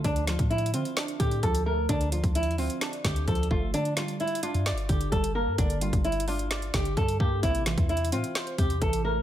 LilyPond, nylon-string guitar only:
\new Staff \with { instrumentName = "Nylon-string guitar" } { \time 4/4 \key d \minor \tempo 4 = 130 d'8 f'8 e'8 f'4 g'8 a'8 bes'8 | d'8 f'8 e'8 f'4 g'8 a'8 f'8 | d'8 f'8 e'8 f'4 g'8 a'8 bes'8 | d'8 f'8 e'8 f'4 g'8 a'8 g'8 |
e'8 f'8 e'8 f'4 g'8 a'8 bes'8 | }